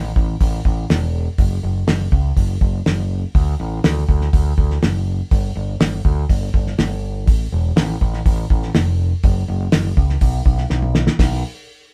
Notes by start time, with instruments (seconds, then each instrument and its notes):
Already playing: picked electric bass A1
0.16 picked electric bass A1, kick
0.40 picked electric bass A1, kick, open hi-hat
0.65 picked electric bass A1, kick
0.90 picked electric bass E1, snare, open hi-hat
1.38 picked electric bass F#1, kick, open hi-hat
1.63 picked electric bass F#1
1.87 picked electric bass F#1, snare, open hi-hat
2.12 picked electric bass C#2, kick
2.37 picked electric bass F#1, kick, open hi-hat
2.61 picked electric bass F#1, kick
2.86 picked electric bass F#1, snare, open hi-hat
3.35 picked electric bass D2, kick, open hi-hat
3.60 picked electric bass A1
3.84 picked electric bass D2, snare, open hi-hat
4.09 picked electric bass D2, kick
4.21 snare
4.33 picked electric bass D2, kick, open hi-hat
4.58 picked electric bass D2, kick
4.71 snare
4.82 picked electric bass F#1, snare, open hi-hat
5.31 picked electric bass G1, kick, open hi-hat
5.56 picked electric bass G1
5.80 picked electric bass G1, snare, open hi-hat
6.05 picked electric bass D2, kick
6.29 picked electric bass G1, kick, open hi-hat
6.54 picked electric bass G1, kick
6.67 snare
6.78 picked electric bass G1, snare, open hi-hat
7.27 picked electric bass A1, kick, open hi-hat
7.52 picked electric bass E1
7.76 picked electric bass A1, snare, open hi-hat
8.01 picked electric bass A1, kick
8.14 snare
8.26 picked electric bass A1, kick, open hi-hat
8.50 picked electric bass A1, kick
8.63 snare
8.74 picked electric bass F1, snare, open hi-hat
9.23 picked electric bass F#1, kick, open hi-hat
9.48 picked electric bass F#1
9.72 picked electric bass F#1, snare, open hi-hat
9.97 picked electric bass C#2, kick
10.09 snare
10.21 picked electric bass B1, kick, open hi-hat
10.45 picked electric bass B1, kick
10.58 snare
10.70 picked electric bass B1, snare
10.82 mid tom
10.95 snare
11.07 snare
11.19 picked electric bass B1, kick, snare, open hi-hat